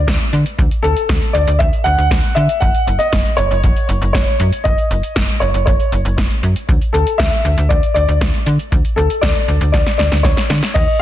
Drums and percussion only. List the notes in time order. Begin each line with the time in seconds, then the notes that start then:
0.08 kick, snare, closed hi-hat
0.20 closed hi-hat
0.33 closed hi-hat
0.46 closed hi-hat
0.59 kick, closed hi-hat
0.71 closed hi-hat
0.84 closed hi-hat
0.97 closed hi-hat
1.09 kick, snare, closed hi-hat
1.22 closed hi-hat
1.35 closed hi-hat
1.48 closed hi-hat
1.60 kick, closed hi-hat
1.73 closed hi-hat
1.86 closed hi-hat
1.98 closed hi-hat
2.11 kick, snare, closed hi-hat
2.24 closed hi-hat
2.36 closed hi-hat
2.49 closed hi-hat
2.62 kick, closed hi-hat
2.75 closed hi-hat
2.87 closed hi-hat
3.00 closed hi-hat
3.13 kick, snare, closed hi-hat
3.25 closed hi-hat
3.38 closed hi-hat
3.51 closed hi-hat
3.64 kick, closed hi-hat
3.76 closed hi-hat
3.89 closed hi-hat
4.02 closed hi-hat
4.14 kick, snare, closed hi-hat
4.27 closed hi-hat
4.40 closed hi-hat
4.53 closed hi-hat
4.65 kick, closed hi-hat
4.78 closed hi-hat
4.91 closed hi-hat
5.03 closed hi-hat
5.16 kick, snare, closed hi-hat
5.29 closed hi-hat
5.41 closed hi-hat
5.54 closed hi-hat
5.67 kick, closed hi-hat
5.80 closed hi-hat
5.92 closed hi-hat
6.05 closed hi-hat
6.18 kick, snare, closed hi-hat
6.31 closed hi-hat
6.43 closed hi-hat
6.56 closed hi-hat
6.69 kick, closed hi-hat
6.82 closed hi-hat
6.94 closed hi-hat
7.07 closed hi-hat
7.19 kick, snare, closed hi-hat
7.32 closed hi-hat
7.45 closed hi-hat
7.58 closed hi-hat
7.70 kick, closed hi-hat
7.83 closed hi-hat
7.96 closed hi-hat
8.09 closed hi-hat
8.21 kick, snare, closed hi-hat
8.34 closed hi-hat
8.46 closed hi-hat
8.59 closed hi-hat
8.72 kick, closed hi-hat
8.85 closed hi-hat
8.98 closed hi-hat
9.10 closed hi-hat
9.23 kick, snare, closed hi-hat
9.35 closed hi-hat
9.48 closed hi-hat
9.61 closed hi-hat
9.74 kick, snare, closed hi-hat
9.86 snare, closed hi-hat
9.99 snare, closed hi-hat
10.12 snare, closed hi-hat
10.24 kick, snare, closed hi-hat
10.37 snare, closed hi-hat
10.50 snare, closed hi-hat
10.63 snare, closed hi-hat
10.75 kick, closed hi-hat, crash